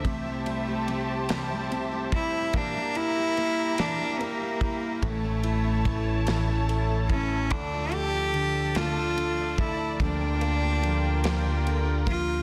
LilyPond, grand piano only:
\new Staff \with { instrumentName = "Grand piano" } { \time 6/8 \key a \phrygian \tempo 4. = 48 c8 g8 c8 g8 c8 g8 | bes8 e'8 bes8 e'8 bes8 e'8 | a8 e'8 a8 e'8 a8 e'8 | d8 a8 d8 a8 d8 a8 |
d8 bes8 d8 bes8 d8 bes8 | }